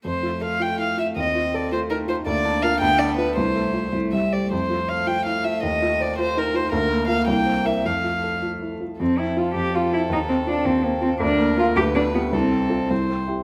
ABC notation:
X:1
M:6/8
L:1/8
Q:3/8=108
K:F
V:1 name="Violin"
c2 f g f e | _e2 d c B c | d2 f g d =B | c3 z e d |
c2 f g f e | _e2 d c B c | B2 f g2 e | f3 z3 |
A6- | A6 | B3 =B3 | A3 c2 z |]
V:2 name="Grand piano"
F,, F A F E F | _E,, F A F _E F | D,, D [FB] D,, D [F=B] | C,, A, [Fc] C,, G, [Gc] |
F,, F c F E F | _E,, F c F _E F | D,, B, [FB] C,, C [EB] | F,, F A F E F |
F,, C F F,, C F | _E,, C F E,, C F | D,, B, [FB] D,, =B, [FG] | C,, C [FA] C,, C [EG] |]
V:3 name="Cello"
A,6 | C3 A,3 | B,3 =B,3 | A,3 A, G, A, |
A,6- | A,6 | B,6 | A,4- A, z |
C E F G F E | _E C D C B, C | D2 F G D =B, | C3 z3 |]